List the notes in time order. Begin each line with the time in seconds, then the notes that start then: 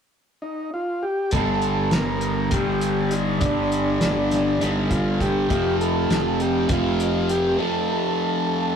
0.42 D#4
0.74 F4
1.03 G4
1.31 G1 G2 D3 A4, kick, closed hi-hat
1.36 G3
1.62 closed hi-hat
1.91 G1 A#4, snare, closed hi-hat
2.21 closed hi-hat
2.51 G1 G2 D3 G4, kick, closed hi-hat
2.56 G3
2.81 closed hi-hat
3.11 D#4, closed hi-hat
3.40 G1 G2 D3 G3 D4, kick, closed hi-hat
3.72 closed hi-hat
4.01 G1, snare, closed hi-hat
4.31 snare, closed hi-hat
4.61 G1 G2 D3 G3 D#4, closed hi-hat
4.90 F4, kick, closed hi-hat
5.21 G4, kick, closed hi-hat
5.49 F1 F2 C3 F3, kick, closed hi-hat
5.81 A4, closed hi-hat
6.10 F1, snare, closed hi-hat
6.40 G4, closed hi-hat
6.69 F1 F2 C3 F3 F4, kick, closed hi-hat
7.00 closed hi-hat
7.29 G4, closed hi-hat
7.58 F2 C3 F3 A4